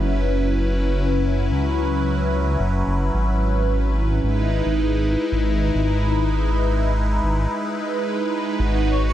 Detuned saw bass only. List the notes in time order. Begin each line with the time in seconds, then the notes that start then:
Already playing: F#1
1.50 C#2
2.59 F#1
2.87 F#1
3.14 G#1
4.23 G#1
4.65 G#1
5.32 G#1
5.75 G#1
7.23 G#1
8.59 G#1